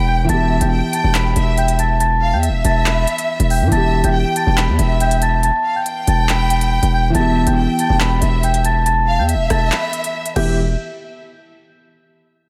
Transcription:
Already playing: 808-style bass E1, felt piano E3 B3 G4, violin section G5, downlifter
0.07 celesta G5 G6
0.24 felt piano E3
0.29 808-style bass E1, felt piano B3, violin section E5, celesta A5 A6, closed hi-hat
0.34 felt piano G4
0.60 808-style bass E1, celesta G5 G6, closed hi-hat
0.72 violin section G5
0.93 celesta A5 A6, closed hi-hat
1.04 808-style bass E1
1.15 celesta B5 B6, clap, closed hi-hat
1.36 808-style bass E1, violin section E5, closed hi-hat
1.58 celesta G5 G6, closed hi-hat
1.68 closed hi-hat
1.79 celesta A5 A6, closed hi-hat
2.00 celesta A5 A6, closed hi-hat
2.22 violin section F5
2.33 808-style bass E2, celesta G5 G6
2.43 violin section E5, closed hi-hat
2.49 808-style bass E1
2.65 808-style bass E1, celesta A5 A6, closed hi-hat
2.86 celesta B5 B6, clap, closed hi-hat
3.07 closed hi-hat
3.18 closed hi-hat
3.40 808-style bass E1, closed hi-hat
3.50 celesta G5 G6, open hi-hat
3.61 808-style bass G2
3.67 felt piano E3
3.72 808-style bass E1, felt piano B3, violin section E5, celesta A5 A6, closed hi-hat
3.77 felt piano G4
4.04 808-style bass E1, celesta G5 G6, closed hi-hat
4.15 violin section G5
4.36 celesta A5 A6, closed hi-hat
4.47 808-style bass E1
4.57 celesta B5 B6, clap, closed hi-hat
4.68 808-style bass E2
4.79 808-style bass E1, violin section E5, closed hi-hat
5.00 celesta G5 G6, closed hi-hat
5.11 closed hi-hat
5.22 celesta A5 A6, closed hi-hat
5.43 celesta A5 A6, closed hi-hat
5.65 violin section F5
5.75 celesta G5 G6
5.86 violin section G5, closed hi-hat
6.07 808-style bass E1, celesta A5 A6, closed hi-hat
6.29 celesta B5 B6, clap, closed hi-hat
6.50 closed hi-hat
6.61 closed hi-hat
6.83 808-style bass E1, closed hi-hat
6.93 celesta G5 G6
7.10 felt piano E3
7.14 808-style bass E1, felt piano B3, violin section E5, celesta A5 A6, closed hi-hat
7.19 felt piano G4
7.46 808-style bass E1, celesta G5 G6, closed hi-hat
7.57 violin section G5
7.79 celesta A5 A6, closed hi-hat
7.90 808-style bass E1
8.00 celesta B5 B6, clap, closed hi-hat
8.22 808-style bass E1, violin section E5, closed hi-hat
8.43 celesta G5 G6, closed hi-hat
8.54 closed hi-hat
8.65 celesta A5 A6, closed hi-hat
8.86 celesta A5 A6, closed hi-hat
9.08 violin section F5
9.18 808-style bass E2, celesta G5 G6
9.29 violin section E5, closed hi-hat
9.34 808-style bass E1
9.50 808-style bass E1, celesta A5 A6, cross-stick, closed hi-hat
9.71 celesta B5 B6, clap, closed hi-hat
9.93 closed hi-hat
10.04 closed hi-hat
10.26 closed hi-hat
10.36 808-style bass E1, felt piano E3 B3 G4, violin section E5, celesta G6, crash

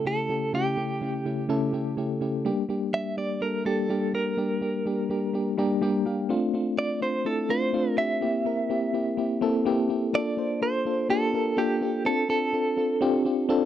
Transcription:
Already playing: fm electric piano C#3 A3 C#4 E4 G4 A4
0.05 fm electric piano C#3 A3 C#4 E4 G4, clean electric guitar A4
0.29 fm electric piano C#3 A3 C#4 E4 G4
0.53 fm electric piano C#3 A3 C#4 E4 G4, clean electric guitar G4
0.77 fm electric piano C#3 A3 C#4 E4 G4
1.01 fm electric piano C#3 A3 C#4 E4 G4
1.25 fm electric piano C#3 A3 C#4 E4 G4
1.49 fm electric piano C#3 A3 C#4 E4 A4
1.73 fm electric piano C#3 A3 C#4 E4 G4
1.97 fm electric piano C#3 A3 C#4 E4 G4
2.21 fm electric piano C#3 A3 C#4 E4 G4
2.45 fm electric piano G3 A#3 D4 G4
2.69 fm electric piano G3 A#3 D4 G4
2.93 fm electric piano G3 D4 G4, clean electric guitar E5
3.17 fm electric piano G3 A#3 D4 G4, clean electric guitar D5
3.41 fm electric piano G3 A#3 D4 A4, clean electric guitar A#4
3.65 fm electric piano G3 A#3 D4 G4, clean electric guitar A4
3.89 fm electric piano G3 A#3 D4 G4
4.13 fm electric piano G3 A#3 D4 G4, clean electric guitar A#4
4.37 fm electric piano G3 A#3 D4 G4
4.61 fm electric piano G3 A#3 D4 G4
4.86 fm electric piano G3 A#3 D4 G4
5.09 fm electric piano G3 A#3 D4 G4
5.33 fm electric piano G3 A#3 D4 G4
5.58 fm electric piano G3 A#3 D4 G4 A#5
5.81 fm electric piano G3 A#3 D4 G4 G5
6.05 fm electric piano G3 A#3 D4 G4 F5
6.29 fm electric piano A3 C4 D4 F4
6.54 fm electric piano A3 C4 D4 F4
6.77 fm electric piano A3 C4 D4 F4, clean electric guitar D5
7.01 fm electric piano A3 C4 D4 F4, clean electric guitar C5
7.25 fm electric piano A3 C4 D4 E4, clean electric guitar A4
7.49 fm electric piano A3 C4 D4 F4, clean electric guitar C5
7.73 fm electric piano A3 C4 D4 F4
7.98 fm electric piano A3 C4 D4 G4, clean electric guitar E5
8.21 fm electric piano A#3 C4 E4 G4
8.45 fm electric piano A#3 C4 E4 A#4
8.69 fm electric piano A#3 C4 E4 G4
8.93 fm electric piano A#3 C4 E4 G4
9.17 fm electric piano A#3 C4 E4 G4
9.41 fm electric piano A#3 C4 E4 A4
9.65 fm electric piano A#3 C4 E4 G4
9.89 fm electric piano A#3 C4 E4 G4
10.13 fm electric piano A#3 D4 F4 A4, clean electric guitar D5
10.37 fm electric piano A#3 D4 F4 C5
10.61 fm electric piano A#3 D4 F4 A4, clean electric guitar C5
10.85 fm electric piano A#3 D4 F4 A4
11.09 fm electric piano A#3 D4 F4 G4, clean electric guitar A4
11.33 fm electric piano A#3 D4 F4 A#4
11.57 fm electric piano A#3 D4 F4 A4, clean electric guitar G4
11.81 fm electric piano A#3 D4 F4 A4
12.05 fm electric piano C4 D4 F4 A4, clean electric guitar A4
12.29 fm electric piano C4 D4 F4 A4, clean electric guitar A4
12.53 fm electric piano C4 D4 F4 A4
12.77 fm electric piano C4 D4 F4 A4
13.01 fm electric piano C4 D4 F4 G4
13.25 fm electric piano C4 D4 F4 G4
13.49 fm electric piano C4 D4 F4 A4

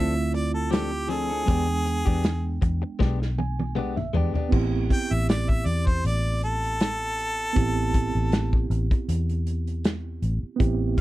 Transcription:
Already playing: fingered electric bass D2, clean electric guitar F3 C4 D4 A4, reed electric piano A3 C4 E4 F4, harmonica E5
0.16 muted clean electric guitar stroke
0.33 harmonica D5, muted clean electric guitar stroke, closed hi-hat
0.54 harmonica A4
0.71 clean electric guitar F3 C4 D4 A4, harmonica G4, snare, closed hi-hat
0.92 muted clean electric guitar stroke
1.09 clean electric guitar F3 C4 D4 A4, harmonica G#4, closed hi-hat
1.30 clean electric guitar C4 D4 A4
1.45 fingered electric bass E2, reed electric piano G#3 B3 D4, clean electric guitar G#3 B3 D4 G4, kick, closed hi-hat
1.50 reed electric piano G5
1.68 muted clean electric guitar stroke
1.85 muted clean electric guitar stroke, closed hi-hat
2.06 fingered electric bass E2, clean electric guitar B3 D4 G4, kick
2.24 snare, closed hi-hat
2.62 fingered electric bass E2, muted clean electric guitar stroke, kick, closed hi-hat
2.82 muted clean electric guitar stroke
2.99 fingered electric bass B1, clean electric guitar G#3 B3 D4 G4, kick, snare
3.20 muted clean electric guitar stroke, snare
3.38 reed electric piano G#5, muted clean electric guitar stroke, high tom
3.60 high tom
3.75 clean electric guitar G#3 B3 D4 G4, reed electric piano F#5, mid tom
3.97 reed electric piano E5, muted clean electric guitar stroke, mid tom
4.13 fingered electric bass E2, clean electric guitar G#3 B3 D4 G4, reed electric piano D5, floor tom
4.34 clean electric guitar B3 D4 G4, muted fingered electric bass stroke, floor tom
4.49 reed electric piano B3 C4 E4 G4, kick, crash
4.53 fingered electric bass A1
4.90 harmonica G5, kick, closed hi-hat
5.11 fingered electric bass A1, harmonica E5, closed hi-hat
5.29 harmonica D5, snare, closed hi-hat
5.49 harmonica E5, kick, closed hi-hat
5.66 fingered electric bass E2, harmonica D5, closed hi-hat
5.86 harmonica C5, kick, closed hi-hat
6.04 fingered electric bass A1, harmonica D5, closed hi-hat
6.42 harmonica A4, closed hi-hat
6.63 closed hi-hat
6.80 snare, closed hi-hat
7.18 closed hi-hat
7.39 closed hi-hat
7.53 fingered electric bass A1, reed electric piano B3 C4 E4 G4, kick, closed hi-hat
7.94 kick, closed hi-hat
8.15 fingered electric bass A1
8.32 snare, closed hi-hat
8.53 kick
8.70 fingered electric bass A1, closed hi-hat
8.91 kick, closed hi-hat
9.08 fingered electric bass E2, closed hi-hat
9.29 closed hi-hat
9.47 closed hi-hat
9.67 closed hi-hat
9.84 snare, closed hi-hat
10.22 fingered electric bass A1, closed hi-hat
10.43 muted fingered electric bass stroke
10.56 reed electric piano B3 C4 E4, kick
10.60 fingered electric bass A1, reed electric piano G4, closed hi-hat
10.97 closed hi-hat

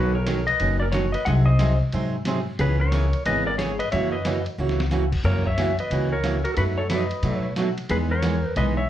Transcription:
Already playing: upright bass B1, steel-string acoustic guitar B2 D#3 F#3 C#4 D#4, electric slide guitar F#4 B4
0.15 electric slide guitar A#4 C#5
0.27 steel-string acoustic guitar B2 D#3 F#3 C#4 D#4, snare, hi-hat pedal, ride
0.47 electric slide guitar B4 D#5, ride
0.60 upright bass F#1, steel-string acoustic guitar B2 D#3 F#3 C#4 D#4, ride
0.80 electric slide guitar A#4 D5
0.92 steel-string acoustic guitar B2 D#3 F#3 C#4 D#4, electric slide guitar F#4 C#5, snare, hi-hat pedal, ride
1.12 electric slide guitar B4 D#5, ride
1.25 upright bass C2, steel-string acoustic guitar C3 F#3 C4 D#4 G#4 C5, electric slide guitar D#5 F#5, ride
1.46 electric slide guitar C5 D#5
1.59 steel-string acoustic guitar C3 F#3 C4 D#4 G#4 C5, snare, hi-hat pedal, ride
1.92 upright bass G#2, steel-string acoustic guitar C3 F#3 C4 D#4 G#4 C5, ride
2.25 steel-string acoustic guitar C3 F#3 C4 D#4 G#4 C5, snare, hi-hat pedal, ride
2.59 upright bass C#2, steel-string acoustic guitar C#3 E3 B3 C#4 G#4, electric slide guitar G#4 B4, ride
2.80 electric slide guitar A#4 C#5
2.92 steel-string acoustic guitar C#3 E3 B3 C#4 G#4, snare, hi-hat pedal, ride
3.13 ride
3.26 upright bass G#1, steel-string acoustic guitar C#3 E3 B3 C#4 G#4, electric slide guitar B4 D#5, ride
3.46 electric slide guitar A#4 D5
3.58 steel-string acoustic guitar C#3 E3 B3 C#4 G#4, electric slide guitar G#4 C#5, snare, hi-hat pedal, ride
3.79 electric slide guitar B4 D#5, ride
3.92 upright bass F#2, steel-string acoustic guitar C#3 E3 A#3 C#4 F#4, electric slide guitar C#5 E5, ride
4.12 electric slide guitar B4 D#5
4.25 steel-string acoustic guitar C#3 E3 A#3 C#4 F#4, snare, hi-hat pedal, ride
4.46 ride
4.58 upright bass C#2, steel-string acoustic guitar C#3 E3 A#3 C#4 F#4
4.69 snare
4.80 snare
4.91 steel-string acoustic guitar C#3 E3 A#3 C#4 F#4, snare, hi-hat pedal
5.12 kick, crash
5.24 upright bass F#2, steel-string acoustic guitar C#3 E3 A#3 C#4 F#4, electric slide guitar A#4 C#5
5.46 electric slide guitar C#5 E5, kick
5.58 steel-string acoustic guitar C#3 E3 A#3 C#4 F#4, snare, hi-hat pedal, ride
5.79 electric slide guitar B4 D#5, ride
5.90 upright bass C#2, steel-string acoustic guitar C#3 E3 A#3 C#4 F#4, ride
6.12 electric slide guitar A#4 C#5
6.24 steel-string acoustic guitar C#3 E3 A#3 C#4 F#4, snare, hi-hat pedal, ride
6.44 electric slide guitar F#4 A#4, ride
6.54 upright bass F#2, steel-string acoustic guitar B2 F#3 A3 F#4, electric slide guitar F#4 A4 B4, ride
6.58 steel-string acoustic guitar D#4
6.78 electric slide guitar A4 C#5
6.90 steel-string acoustic guitar B2 F#3 A3 D#4 F#4, electric slide guitar B4 D#5, snare, hi-hat pedal, ride
7.11 ride
7.23 upright bass B2, steel-string acoustic guitar B2 F#3 A3 D#4 F#4, ride
7.37 electric slide guitar C#5
7.56 steel-string acoustic guitar B2 F#3 A3 D#4 F#4, snare, hi-hat pedal, ride
7.78 ride
7.89 upright bass E2, steel-string acoustic guitar E3 G#3 B3 D#4 G#4, electric slide guitar G#4 B4, ride
8.11 electric slide guitar A#4 C#5
8.23 steel-string acoustic guitar E3 G#3 B3 D#4 G#4, snare, hi-hat pedal, ride
8.56 upright bass B1, steel-string acoustic guitar E3 G#3 B3 D#4 G#4, electric slide guitar B4 D#5, ride
8.77 electric slide guitar C#5 E5

